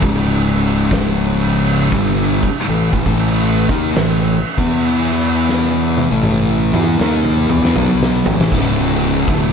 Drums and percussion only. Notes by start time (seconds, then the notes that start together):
0.02 kick
0.15 crash
0.66 crash
0.91 kick, snare, crash
1.41 crash
1.67 crash
1.92 kick
2.17 crash
2.43 kick, crash
2.93 kick, crash
3.06 kick
3.19 crash
3.69 kick, crash
3.95 snare, crash
4.45 crash
4.58 kick, snare
4.71 crash
5.21 crash
5.49 snare
5.97 high tom
6.23 mid tom
6.74 mid tom
7.01 snare
7.24 mid tom
7.50 mid tom
7.65 snare
7.76 floor tom
8.03 snare
8.26 floor tom
8.41 snare
8.52 kick, crash
9.28 kick, crash